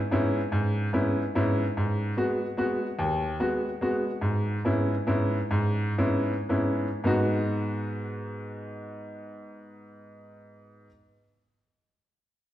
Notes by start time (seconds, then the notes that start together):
0.11 G#2 B3 C#4 E4
0.52 G#2
0.93 G#2 B3 C#4 E4
1.35 G#2 B3 C#4 E4
1.77 G#2
2.17 G#3 B3 F#4
2.57 G#3 B3 F#4
2.99 D#2
3.40 G#3 B3 F#4
3.81 G#3 B3 F#4
4.21 G#2
4.65 G#2 B3 C#4 E4
5.07 G#2 B3 C#4 E4
5.51 G#2
5.98 G#2 B3 C#4 E4
6.49 G#2 B3 C#4 E4
7.04 G#2 G#3 B3 D#4 F#4